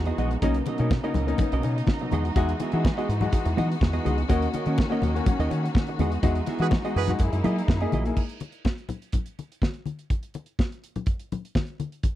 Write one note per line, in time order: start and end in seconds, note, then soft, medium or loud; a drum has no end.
0.00 0.11 E2 loud
0.00 0.40 E3 medium
0.00 0.39 G#3 medium
0.00 0.40 D#4 medium
0.00 0.38 F#4 medium
0.05 0.19 E3 medium
0.05 0.17 B3 medium
0.05 0.17 F#4 medium
0.05 0.18 G#4 medium
0.05 0.18 D#5 medium
0.05 closed hi-hat soft
0.18 0.35 A#1 medium
0.18 0.32 G#3 medium
0.18 0.36 B3 medium
0.18 0.32 D#4 medium
0.18 0.31 F#4 medium
0.18 0.32 F#4 medium
0.18 0.31 G#4 medium
0.18 0.30 D#5 loud
0.18 closed hi-hat medium
0.31 muted clean electric guitar stroke soft
0.31 closed hi-hat soft
0.41 0.59 B1 loud
0.41 2.10 C#3 medium
0.41 2.10 A#3 medium
0.41 0.56 A#3 loud
0.41 2.10 B3 medium
0.41 0.56 C#4 loud
0.41 0.61 C#4 medium
0.41 4.25 D#4 medium
0.41 0.56 D#4 loud
0.41 0.61 F#4 loud
0.41 0.61 A#4 loud
0.41 0.61 D#5 loud
0.41 kick loud
0.41 closed hi-hat medium
0.41 muted conga medium
0.54 closed hi-hat medium
0.66 0.80 B2 medium
0.66 0.80 F#3 medium
0.66 0.80 C#4 medium
0.66 0.80 F#4 medium
0.66 0.79 A#4 medium
0.66 0.78 D#5 medium
0.66 closed hi-hat medium
0.66 muted conga medium
0.78 0.96 B2 medium
0.78 0.91 A#3 medium
0.78 0.92 C#4 medium
0.78 0.90 C#4 medium
0.78 0.92 D#4 medium
0.78 0.91 F#4 medium
0.78 0.91 A#4 medium
0.78 0.91 D#5 medium
0.78 closed hi-hat soft
0.91 kick loud
0.91 snare loud
0.91 high conga medium
1.03 1.16 A#3 medium
1.03 1.16 C#4 medium
1.03 1.14 C#4 medium
1.03 1.16 D#4 medium
1.03 1.15 F#4 medium
1.03 1.15 A#4 loud
1.03 1.16 D#5 loud
1.03 closed hi-hat soft
1.14 1.32 C#2 medium
1.14 1.29 B2 medium
1.14 1.29 F#3 medium
1.14 1.30 C#4 medium
1.14 1.28 A#4 medium
1.14 1.27 D#5 medium
1.14 closed hi-hat medium
1.14 low conga medium
1.27 1.40 A#3 medium
1.27 1.38 C#4 medium
1.27 1.38 D#4 loud
1.27 muted clean electric guitar stroke soft
1.27 closed hi-hat soft
1.38 1.53 C#4 medium
1.38 1.53 D#4 medium
1.38 muted clean electric guitar stroke soft
1.38 kick loud
1.38 closed hi-hat medium
1.38 muted conga soft
1.38 low conga medium
1.52 1.60 B1 loud
1.52 1.65 B2 medium
1.52 1.64 F#3 medium
1.52 1.64 C#4 medium
1.52 1.64 F#4 medium
1.52 1.64 A#4 medium
1.52 1.65 D#5 medium
1.52 closed hi-hat medium
1.63 1.81 B2 medium
1.63 1.77 C#4 medium
1.63 1.77 D#4 medium
1.63 muted clean electric guitar stroke soft
1.63 closed hi-hat medium
1.63 muted conga soft
1.77 muted clean electric guitar stroke soft
1.77 closed hi-hat medium
1.87 1.93 C#4 soft
1.87 1.93 D#4 soft
1.87 muted clean electric guitar stroke soft
1.87 kick loud
1.87 snare loud
1.87 high conga medium
1.99 2.13 B2 medium
1.99 2.13 F#3 medium
1.99 muted clean electric guitar stroke medium
1.99 closed hi-hat soft
2.12 2.29 E2 loud
2.12 4.27 E3 medium
2.12 2.25 G#3 medium
2.12 4.27 G#3 medium
2.12 2.30 B3 medium
2.12 2.25 D#4 medium
2.12 7.16 F#4 medium
2.12 2.26 F#4 medium
2.12 2.25 F#4 medium
2.12 2.24 G#4 loud
2.12 2.24 D#5 medium
2.12 closed hi-hat medium
2.12 high conga medium
2.25 muted clean electric guitar stroke soft
2.25 closed hi-hat soft
2.36 2.53 E2 medium
2.36 2.50 G#3 loud
2.36 2.55 B3 medium
2.36 2.50 D#4 loud
2.36 2.50 F#4 loud
2.36 2.55 F#4 medium
2.36 2.55 G#4 medium
2.36 2.55 E5 loud
2.36 kick loud
2.36 closed hi-hat medium
2.36 muted conga medium
2.49 closed hi-hat medium
2.60 2.74 E3 medium
2.60 2.74 B3 medium
2.60 2.73 F#4 medium
2.60 2.73 G#4 medium
2.60 2.72 E5 medium
2.60 closed hi-hat medium
2.60 muted conga medium
2.72 2.90 E3 loud
2.72 2.85 G#3 medium
2.72 2.84 B3 medium
2.72 2.85 D#4 medium
2.72 2.86 F#4 medium
2.72 2.84 F#4 medium
2.72 2.84 G#4 medium
2.72 2.86 E5 medium
2.72 closed hi-hat soft
2.85 kick loud
2.85 snare loud
2.85 high conga medium
2.97 3.09 G#3 medium
2.97 3.08 B3 medium
2.97 3.10 D#4 medium
2.97 3.10 F#4 medium
2.97 3.08 F#4 medium
2.97 3.09 G#4 medium
2.97 3.09 D#5 medium
2.97 closed hi-hat soft
3.09 3.26 G#2 medium
3.09 3.22 E3 medium
3.09 muted clean electric guitar stroke soft
3.09 closed hi-hat medium
3.21 3.34 G#3 medium
3.21 3.31 D#4 medium
3.21 3.32 F#4 loud
3.21 muted clean electric guitar stroke soft
3.21 closed hi-hat soft
3.21 low conga medium
3.32 3.46 D#4 medium
3.32 3.47 F#4 medium
3.32 muted clean electric guitar stroke soft
3.32 kick loud
3.32 closed hi-hat medium
3.32 muted conga soft
3.45 3.54 E2 loud
3.45 3.58 E3 medium
3.45 muted clean electric guitar stroke soft
3.45 closed hi-hat medium
3.57 3.74 E3 loud
3.57 3.75 B3 medium
3.57 3.71 D#4 medium
3.57 3.69 F#4 medium
3.57 3.71 F#4 medium
3.57 3.69 G#4 medium
3.57 3.68 D#5 medium
3.57 closed hi-hat medium
3.57 muted conga soft
3.57 low conga medium
3.70 muted clean electric guitar stroke soft
3.70 closed hi-hat soft
3.81 3.98 E2 loud
3.81 3.86 D#4 soft
3.81 3.87 F#4 soft
3.81 muted clean electric guitar stroke soft
3.81 kick loud
3.81 snare loud
3.81 high conga medium
3.93 4.06 E3 medium
3.93 4.04 B3 medium
3.93 4.04 F#4 medium
3.93 4.05 G#4 medium
3.93 4.05 D#5 medium
3.93 closed hi-hat soft
4.04 4.23 C#2 medium
4.04 4.18 G#3 medium
4.04 4.24 B3 medium
4.04 4.19 D#4 medium
4.04 4.19 F#4 medium
4.04 4.18 F#4 medium
4.04 4.17 G#4 loud
4.04 4.17 D#5 loud
4.04 closed hi-hat medium
4.04 high conga medium
4.18 muted clean electric guitar stroke medium
4.18 closed hi-hat soft
4.29 4.46 D#2 loud
4.29 5.97 D#3 medium
4.29 4.43 A#3 loud
4.29 5.97 A#3 medium
4.29 4.43 C#4 medium
4.29 5.97 C#4 medium
4.29 4.48 C#4 medium
4.29 4.43 F#4 loud
4.29 4.48 F#4 medium
4.29 4.48 A#4 loud
4.29 4.49 D#5 loud
4.29 kick loud
4.29 closed hi-hat medium
4.29 muted conga medium
4.42 closed hi-hat medium
4.53 4.67 D#3 medium
4.53 4.67 C#4 medium
4.53 4.66 F#4 medium
4.53 4.66 A#4 medium
4.53 4.65 D#5 medium
4.53 closed hi-hat medium
4.53 muted conga medium
4.66 4.83 D#3 loud
4.66 4.79 A#3 medium
4.66 4.79 C#4 medium
4.66 4.78 C#4 medium
4.66 4.79 F#4 medium
4.66 4.78 F#4 medium
4.66 4.78 A#4 medium
4.66 4.78 D#5 medium
4.66 closed hi-hat soft
4.78 muted clean electric guitar stroke soft
4.78 kick loud
4.78 snare loud
4.78 high conga medium
4.90 5.03 A#3 medium
4.90 5.02 C#4 medium
4.90 5.03 F#4 medium
4.90 5.02 F#4 medium
4.90 5.03 A#4 medium
4.90 5.03 D#5 medium
4.90 closed hi-hat soft
5.02 5.19 D#2 medium
5.02 5.16 D#3 medium
5.02 5.17 C#4 medium
5.02 5.16 F#4 medium
5.02 5.15 A#4 medium
5.02 5.14 D#5 medium
5.02 closed hi-hat medium
5.02 low conga medium
5.15 5.27 A#3 medium
5.15 5.24 C#4 medium
5.15 5.25 F#4 medium
5.15 muted clean electric guitar stroke soft
5.15 closed hi-hat soft
5.26 5.40 C#4 medium
5.26 5.40 F#4 medium
5.26 muted clean electric guitar stroke soft
5.26 kick loud
5.26 closed hi-hat medium
5.26 muted conga soft
5.26 low conga medium
5.39 5.47 D#2 loud
5.39 5.52 D#3 medium
5.39 5.50 C#4 medium
5.39 5.51 F#4 medium
5.39 5.51 A#4 medium
5.39 5.51 D#5 medium
5.39 closed hi-hat medium
5.50 5.67 D#3 loud
5.50 5.64 C#4 medium
5.50 5.64 F#4 medium
5.50 muted clean electric guitar stroke soft
5.50 closed hi-hat medium
5.50 muted conga soft
5.64 muted clean electric guitar stroke medium
5.64 closed hi-hat medium
5.75 5.80 C#4 soft
5.75 5.80 F#4 soft
5.75 muted clean electric guitar stroke soft
5.75 kick loud
5.75 snare loud
5.75 high conga medium
5.87 6.00 D#3 medium
5.87 muted clean electric guitar stroke soft
5.87 closed hi-hat soft
5.98 6.16 E2 loud
5.98 7.18 E3 medium
5.98 7.18 G#3 medium
5.98 6.13 G#3 medium
5.98 6.18 B3 medium
5.98 7.18 D#4 medium
5.98 6.13 D#4 medium
5.98 6.13 F#4 medium
5.98 6.12 G#4 medium
5.98 6.11 D#5 medium
5.98 closed hi-hat medium
5.98 high conga medium
6.12 muted clean electric guitar stroke soft
6.12 closed hi-hat medium
6.23 6.40 E2 loud
6.23 6.37 G#3 loud
6.23 6.42 B3 medium
6.23 6.37 D#4 loud
6.23 6.37 F#4 loud
6.23 6.42 F#4 medium
6.23 6.42 G#4 loud
6.23 6.42 E5 medium
6.23 kick loud
6.23 closed hi-hat medium
6.23 muted conga medium
6.35 closed hi-hat soft
6.46 6.61 E3 medium
6.46 6.61 B3 medium
6.46 6.60 F#4 medium
6.46 6.59 G#4 medium
6.46 6.59 E5 medium
6.46 closed hi-hat medium
6.46 muted conga medium
6.59 6.77 E3 loud
6.59 6.72 G#3 medium
6.59 6.71 B3 medium
6.59 6.72 D#4 medium
6.59 6.72 F#4 medium
6.59 6.68 F#4 loud
6.59 6.71 F#4 medium
6.59 6.72 G#4 medium
6.59 6.68 G#4 medium
6.59 6.68 B4 loud
6.59 6.73 E5 medium
6.59 closed hi-hat soft
6.71 kick loud
6.71 snare loud
6.71 high conga medium
6.84 6.96 G#3 medium
6.84 6.95 B3 medium
6.84 6.97 D#4 medium
6.84 6.97 F#4 medium
6.84 6.95 F#4 medium
6.84 6.96 G#4 medium
6.84 6.96 D#5 medium
6.84 closed hi-hat soft
6.96 7.12 F#2 medium
6.96 7.10 E3 medium
6.96 7.11 F#4 loud
6.96 7.11 G#4 loud
6.96 7.11 B4 loud
6.96 muted clean electric guitar stroke soft
6.96 open hi-hat medium
7.08 7.21 G#3 medium
7.08 7.21 D#4 medium
7.08 7.21 F#4 loud
7.08 muted clean electric guitar stroke medium
7.08 snare soft
7.08 closed hi-hat soft
7.08 low conga medium
7.19 7.29 F#2 loud
7.19 8.15 G#3 medium
7.19 8.16 A#3 medium
7.19 8.15 D#4 medium
7.19 8.15 E4 medium
7.19 7.34 E4 medium
7.19 7.34 G#4 medium
7.19 muted clean electric guitar stroke soft
7.19 kick loud
7.19 closed hi-hat medium
7.19 muted conga soft
7.32 7.40 F#2 loud
7.32 7.46 F#3 medium
7.32 muted clean electric guitar stroke medium
7.32 closed hi-hat medium
7.44 7.61 F#3 loud
7.44 7.62 A#3 medium
7.44 7.58 E4 medium
7.44 7.57 E4 medium
7.44 7.58 G#4 medium
7.44 7.57 G#4 medium
7.44 7.56 D#5 medium
7.44 closed hi-hat medium
7.44 muted conga soft
7.44 low conga medium
7.58 muted clean electric guitar stroke medium
7.58 closed hi-hat medium
7.68 7.85 F#2 loud
7.68 muted clean electric guitar stroke soft
7.68 kick loud
7.68 snare loud
7.68 high conga medium
7.80 7.93 A#3 medium
7.80 7.92 A#3 medium
7.80 7.93 D#4 medium
7.80 7.93 E4 medium
7.80 7.92 E4 medium
7.80 7.93 G#4 medium
7.80 7.93 D#5 medium
7.80 closed hi-hat soft
7.92 8.09 A#1 loud
7.92 8.06 F#3 medium
7.92 8.11 A#3 medium
7.92 8.05 E4 medium
7.92 8.05 G#4 loud
7.92 8.04 D#5 medium
7.92 closed hi-hat medium
7.92 high conga medium
8.05 8.18 A#3 medium
8.05 8.18 D#4 medium
8.05 8.18 E4 medium
8.05 8.18 G#4 medium
8.05 muted clean electric guitar stroke soft
8.05 closed hi-hat soft
8.17 kick medium
8.17 crash medium
8.17 muted conga medium
8.29 closed hi-hat soft
8.40 closed hi-hat medium
8.40 muted conga medium
8.52 closed hi-hat soft
8.65 kick loud
8.65 snare loud
8.65 high conga medium
8.78 closed hi-hat soft
8.89 closed hi-hat medium
8.89 low conga medium
9.02 closed hi-hat soft
9.12 kick medium
9.12 closed hi-hat medium
9.12 muted conga soft
9.12 low conga medium
9.26 closed hi-hat soft
9.39 closed hi-hat soft
9.39 muted conga soft
9.52 closed hi-hat soft
9.62 kick medium
9.62 snare medium
9.62 high conga medium
9.74 closed hi-hat soft
9.86 closed hi-hat soft
9.86 high conga medium
9.99 closed hi-hat soft
10.10 kick loud
10.10 closed hi-hat medium
10.10 muted conga medium
10.23 closed hi-hat soft
10.34 closed hi-hat medium
10.34 muted conga medium
10.46 closed hi-hat soft
10.59 kick loud
10.59 snare medium
10.59 high conga medium
10.72 closed hi-hat soft
10.84 closed hi-hat medium
10.96 closed hi-hat soft
10.96 low conga medium
11.06 kick loud
11.06 closed hi-hat medium
11.06 muted conga soft
11.20 closed hi-hat soft
11.32 closed hi-hat medium
11.32 muted conga soft
11.32 low conga medium
11.45 closed hi-hat soft
11.55 kick loud
11.55 snare loud
11.55 high conga medium
11.67 closed hi-hat soft
11.80 closed hi-hat medium
11.80 high conga medium
11.92 closed hi-hat soft
12.03 kick loud
12.03 closed hi-hat medium
12.03 muted conga medium